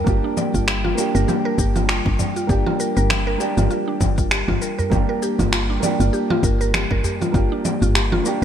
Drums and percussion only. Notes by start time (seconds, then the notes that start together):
0.07 kick, cabasa
0.37 low conga, cabasa
0.54 kick, cabasa
0.68 finger snap, cabasa
0.85 low conga
0.98 cabasa
1.15 cabasa
1.29 low conga, cabasa
1.58 kick, cabasa
1.76 low conga, cabasa
1.89 finger snap, cabasa
2.06 kick
2.19 low conga, udu, cabasa
2.36 cabasa
2.49 kick, cabasa
2.67 low conga
2.80 cabasa
2.97 cabasa
3.10 finger snap, low conga, cabasa
3.40 cabasa
3.58 low conga, cabasa
3.71 cabasa
4.01 kick, low conga, cabasa
4.18 kick, cabasa
4.31 finger snap, cabasa
4.48 kick, low conga
4.62 cabasa
4.79 udu, cabasa
4.92 kick, low conga, cabasa
5.22 cabasa
5.39 kick, low conga, cabasa
5.53 finger snap, cabasa
5.83 low conga, cabasa
6.00 cabasa
6.14 cabasa
6.30 low conga
6.43 kick, cabasa
6.61 cabasa
6.74 finger snap, low conga, cabasa
6.91 kick
7.04 udu, cabasa
7.22 low conga, cabasa
7.34 kick, cabasa
7.65 low conga, cabasa
7.82 udu, cabasa
7.95 finger snap, cabasa
8.12 low conga
8.25 cabasa